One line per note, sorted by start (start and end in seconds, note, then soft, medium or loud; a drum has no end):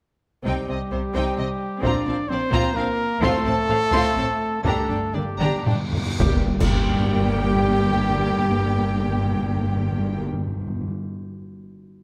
0.44 0.54 C2 medium
0.44 0.53 C3 soft
0.44 1.79 G3 medium
0.44 0.66 C4 medium
0.44 0.67 D#4 soft
0.44 1.84 G4 medium
0.44 0.67 G5 soft
0.44 taiko medium
0.68 0.77 C2 soft
0.68 0.77 C3 soft
0.68 0.76 C4 soft
0.68 0.78 D#5 soft
0.91 1.00 C2 soft
0.91 1.00 C3 soft
0.91 0.99 G3 soft
0.91 0.99 C4 soft
0.91 1.01 C5 soft
1.14 1.23 C2 medium
1.14 1.23 C3 medium
1.14 1.34 C4 medium
1.14 1.37 D#4 medium
1.14 1.36 G5 medium
1.36 1.47 C2 soft
1.36 1.46 C3 soft
1.36 1.44 C4 soft
1.36 1.46 C4 soft
1.36 1.47 D#5 soft
1.81 1.92 A#1 medium
1.81 1.92 A#2 medium
1.81 2.04 C4 medium
1.81 2.29 D4 medium
1.81 2.06 F4 medium
1.81 2.30 D5 medium
1.81 taiko medium
1.85 2.06 A#5 soft
2.06 2.15 A#1 soft
2.06 2.15 A#2 soft
2.06 2.14 C4 soft
2.06 2.16 D4 soft
2.06 2.16 F5 soft
2.29 2.37 A#1 soft
2.29 2.38 A#2 soft
2.29 2.37 C4 soft
2.29 2.75 C4 medium
2.29 2.39 C4 soft
2.29 2.77 C5 loud
2.29 2.40 D5 soft
2.51 2.60 A#1 medium
2.51 2.61 A#2 medium
2.51 2.74 C4 medium
2.51 2.75 F4 medium
2.51 2.75 A#5 medium
2.51 taiko medium
2.73 2.83 A#1 medium
2.73 2.84 A#2 medium
2.73 3.21 A#3 medium
2.73 2.84 C4 medium
2.73 2.83 D4 medium
2.73 3.23 A#4 loud
2.78 2.86 F5 medium
3.18 3.28 A1 medium
3.18 3.30 A2 medium
3.18 4.61 A3 loud
3.18 3.43 C4 medium
3.18 4.63 A4 loud
3.18 taiko loud
3.23 3.45 F4 medium
3.23 3.45 C6 medium
3.44 3.52 A1 medium
3.44 3.53 A2 medium
3.44 3.53 C4 medium
3.44 3.55 C4 medium
3.44 3.54 A5 medium
3.68 3.76 A1 medium
3.68 3.76 A2 medium
3.68 3.78 A3 medium
3.68 3.77 C4 medium
3.68 3.77 F5 medium
3.92 4.00 A1 medium
3.92 4.00 A2 medium
3.92 4.15 C4 medium
3.92 4.16 F4 medium
3.92 4.15 C6 medium
3.92 taiko medium
4.16 4.24 A1 medium
4.16 4.24 A2 medium
4.16 4.25 C4 medium
4.16 4.26 C4 soft
4.16 4.25 A5 medium
4.63 4.72 G1 medium
4.63 4.72 G2 medium
4.63 5.13 A3 medium
4.63 4.87 D4 medium
4.63 4.89 G4 medium
4.63 5.16 A4 medium
4.63 4.88 A#5 medium
4.63 taiko loud
4.63 cymbal swell medium
4.72 4.79 G2 soft
4.80 4.85 G2 soft
4.86 4.98 G1 soft
4.86 4.94 G2 soft
4.86 4.97 G2 soft
4.86 4.96 D4 soft
4.86 4.98 G5 soft
4.91 4.99 D4 soft
5.05 5.12 G2 soft
5.13 5.22 G1 soft
5.13 5.20 G2 soft
5.13 5.23 G2 soft
5.13 5.66 G3 medium
5.13 5.24 A#3 soft
5.13 5.21 D4 soft
5.13 5.67 G4 medium
5.13 5.22 D5 soft
5.13 taiko mid medium
5.21 5.27 G2 medium
5.29 5.36 G2 soft
5.37 5.48 G1 medium
5.37 5.45 G2 medium
5.37 5.48 G2 medium
5.37 5.65 D4 medium
5.37 5.65 G4 medium
5.37 5.65 A#5 medium
5.37 taiko mid medium
5.46 5.53 G2 medium
5.55 5.61 G2 medium
5.62 5.73 G1 soft
5.62 5.71 G2 medium
5.62 5.74 G2 soft
5.62 5.74 D4 soft
5.62 taiko low-mid medium
5.67 5.75 D4 soft
5.67 5.75 G5 soft
5.72 5.80 G2 medium
5.81 5.88 G2 medium
5.89 5.96 G2 medium
5.89 taiko low loud
5.97 6.04 G2 medium
6.05 6.15 G2 loud
6.19 6.35 G1 medium
6.19 6.36 G2 medium
6.19 6.26 G2 medium
6.19 10.22 G3 medium
6.19 6.36 A#3 medium
6.19 6.35 G4 medium
6.19 6.36 G4 medium
6.19 6.37 G5 medium
6.19 concert bass drum medium
6.19 snare medium
6.19 taiko loud
6.19 impact medium
6.26 6.34 G2 medium
6.60 10.21 G1 medium
6.60 6.67 G2 medium
6.60 10.23 G2 medium
6.60 10.22 A#3 medium
6.60 10.22 G4 medium
6.60 10.23 G4 medium
6.60 10.22 G5 medium
6.60 concert bass drum medium
6.60 taiko medium
6.60 crash medium
6.67 6.73 G2 medium
6.73 6.80 G2 medium
6.80 6.86 G2 medium
6.86 6.93 G2 medium
6.94 7.00 G2 medium
7.01 7.07 G2 medium
7.07 7.13 G2 medium
7.13 7.20 G2 medium
7.20 7.27 G2 medium
7.27 7.34 G2 medium
7.35 7.41 G2 medium
7.42 7.49 G2 medium
7.49 7.55 G2 medium
7.56 7.63 G2 medium
7.63 7.70 G2 medium
7.70 7.76 G2 medium
7.76 7.83 G2 medium
7.83 7.89 G2 medium
7.89 7.96 G2 medium
7.96 8.03 G2 medium
8.03 8.10 G2 medium
8.10 8.16 G2 medium
8.16 8.23 G2 medium
8.23 8.30 G2 medium
8.31 8.38 G2 medium
8.38 8.45 G2 medium
8.45 8.51 G2 medium
8.51 8.58 G2 medium
8.59 8.65 G2 medium
8.65 8.72 G2 medium
8.73 8.79 G2 medium
8.80 8.87 G2 medium
8.87 8.94 G2 medium
8.94 9.01 G2 medium
9.01 9.08 G2 medium
9.08 9.15 G2 medium
9.15 9.22 G2 medium
9.22 9.29 G2 medium
9.29 9.36 G2 medium
9.36 9.43 G2 medium
9.43 9.49 G2 medium
9.49 9.56 G2 medium
9.56 9.63 G2 medium
9.63 9.70 G2 medium
9.70 9.76 G2 medium
9.76 9.83 G2 medium
9.83 9.90 G2 medium
9.90 9.97 G2 medium
9.97 10.04 G2 medium
10.04 10.11 G2 medium
10.12 10.19 G2 medium
10.19 10.25 G2 medium
10.25 10.32 G2 medium
10.33 10.40 G2 medium
10.40 10.47 G2 medium
10.47 10.54 G2 medium
10.54 10.60 G2 medium
10.60 10.67 G2 medium
10.67 10.74 G2 medium
10.74 10.81 G2 medium
10.81 10.88 G2 medium
10.88 10.94 G2 medium